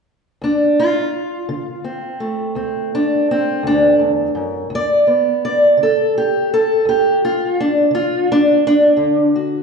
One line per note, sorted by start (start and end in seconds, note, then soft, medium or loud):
0.42 1.06 D2 medium
0.42 0.79 D4 medium
0.80 2.93 F4 medium
1.49 2.13 D3 medium
1.84 2.55 C4 soft
2.20 4.66 A3 soft
2.55 3.20 D2 medium
2.55 2.92 C4 soft
2.95 3.29 D4 medium
3.31 3.65 C4 medium
3.63 3.99 D2 medium
3.63 4.01 D4 medium
3.99 4.35 E2 medium
4.35 4.70 F#2 medium
4.70 5.34 D2 medium
4.75 5.08 D5 loud
5.07 5.78 B3 soft
5.45 5.79 D5 loud
5.77 6.42 D3 medium
5.83 6.16 A4 medium
6.18 6.51 G4 medium
6.54 6.87 A4 loud
6.85 7.49 D2 medium
6.85 7.22 G4 medium
7.25 7.58 F4 medium
7.60 7.94 D4 medium
7.91 8.55 D3 medium
7.91 8.29 F4 medium
8.32 8.65 D4 loud
8.67 9.36 D4 loud
8.96 9.62 D2 medium
8.96 9.63 D3 soft
9.35 9.63 F#4 soft